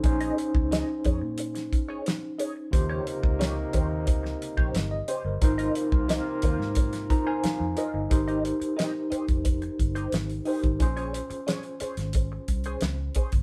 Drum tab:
HH |xxx-x-x-xxx-x-x-|x-x-x-x-x-x-x-x-|xxx-x-x-xxx-x-x-|xxxxx-xxxxxxxxox|
SD |----o----o--o---|----o----o--o---|----o--o-o--o---|----o-------o---|
BD |o--o--o---o-----|o--o--o-o--o----|o--o--o-o-o-----|o------oo-o----o|

HH |xxxxxxxxx-xxx-xx|
SD |----o--o----o---|
BD |o-------o-o---oo|